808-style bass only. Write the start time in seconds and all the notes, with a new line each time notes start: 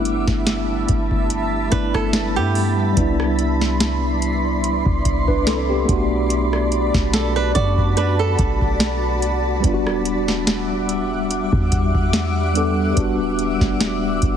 Already playing: G1
0.28 G1
0.89 G1
1.72 G1
2.37 G2
2.97 C2
4.86 C2
5.89 B1
6.94 B1
7.56 F#2
8.39 B1
9.22 C2
9.64 E1
11.53 E2
12.97 E1
13.61 E1
14.23 E1